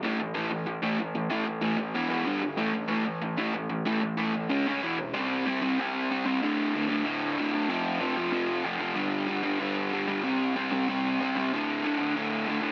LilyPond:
\new Staff \with { instrumentName = "Overdriven electric guitar" } { \clef bass \time 4/4 \key a \dorian \tempo 4 = 188 <a, e a>8 <a, e>8 <a, e a>8 <a, e>8 <a, e>8 <a, e a>8 <a, e>8 <a, e>8 | <a, e a>8 <a, e>8 <a, e a>8 <a, e>8 <e, b, e>8 <e, b, e>8 <g, d g>8 <g, d>8 | <a, e a>8 <a, e>8 <a, e a>8 <a, e>8 <a, e>8 <a, e a>8 <a, e>8 <a, e>8 | <a, e a>8 <a, e>8 <a, e a>8 <a, e>8 <cis gis cis'>8 <cis gis cis'>8 <e, b, e>8 <e, b,>8 |
<c g c'>4 <c g c'>8 <c g c'>8 <c g c'>4 <c g c'>8 <c g c'>8 | <d, a, d>4 <d, a, d>8 <d, a, d>8 <d, a, d>4 <d, a, d>8 <d, a, d>8 | <f, c f>4 <f, c f>8 <f, c f>8 <f, c f>4 <f, c f>8 <f, c f>8 | <g, d g>4 <g, d g>8 <g, d g>8 <g, d g>4 <g, d g>8 <g, d g>8 |
<c g c'>4 <c g c'>8 <c g c'>8 <c g c'>4 <c g c'>8 <c g c'>8 | <d, a, d>4 <d, a, d>8 <d, a, d>8 <d, a, d>4 <d, a, d>8 <d, a, d>8 | }